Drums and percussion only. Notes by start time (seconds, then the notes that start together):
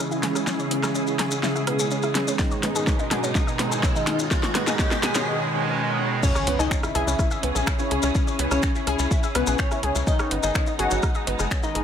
0.12 maracas
0.23 snare, closed hi-hat
0.35 cross-stick, maracas
0.47 snare, maracas
0.59 maracas
0.71 closed hi-hat
0.83 cross-stick, snare, maracas
0.95 maracas
1.07 maracas
1.19 cross-stick, snare, closed hi-hat
1.31 maracas
1.43 snare, maracas
1.56 maracas
1.67 cross-stick, closed hi-hat
1.79 maracas
1.91 maracas
2.03 cross-stick, maracas
2.15 snare, closed hi-hat
2.28 maracas
2.39 kick, snare, maracas
2.51 maracas
2.63 snare, closed hi-hat
2.75 maracas
2.87 kick, snare, maracas
2.99 maracas
3.11 snare, closed hi-hat
3.24 maracas
3.35 kick, snare, maracas
3.48 maracas
3.59 snare, closed hi-hat
3.72 maracas
3.83 kick, snare, maracas
3.96 maracas
4.07 snare, closed hi-hat
4.19 maracas
4.31 kick, snare, maracas
4.43 snare, maracas
4.55 snare, closed hi-hat
4.67 snare, maracas
4.79 kick, snare, maracas
4.91 snare, maracas
5.03 snare, closed hi-hat
5.15 snare, maracas
6.23 kick, crash, maracas
6.35 cross-stick, maracas
6.47 closed hi-hat
6.60 maracas
6.71 finger snap, kick, maracas
6.83 cross-stick, maracas
6.95 closed hi-hat
7.08 maracas
7.19 kick, cross-stick, maracas
7.31 maracas
7.43 closed hi-hat
7.56 maracas
7.67 finger snap, kick, cross-stick, maracas
7.79 maracas
7.91 closed hi-hat
8.02 cross-stick, maracas
8.15 kick, maracas
8.28 maracas
8.39 closed hi-hat
8.51 cross-stick, maracas
8.63 finger snap, kick, maracas
8.75 maracas
8.87 cross-stick, closed hi-hat
8.99 maracas
9.11 kick, maracas
9.23 maracas
9.35 cross-stick, closed hi-hat
9.47 maracas
9.59 finger snap, kick, maracas
9.71 cross-stick, maracas
9.83 closed hi-hat
9.95 maracas
10.07 kick, maracas
10.19 cross-stick, maracas
10.31 closed hi-hat
10.43 maracas
10.55 finger snap, kick, cross-stick, maracas
10.67 maracas
10.79 closed hi-hat
10.91 maracas
11.03 kick, cross-stick, maracas
11.15 maracas
11.27 closed hi-hat
11.39 cross-stick, maracas
11.51 finger snap, kick, maracas
11.63 maracas
11.75 closed hi-hat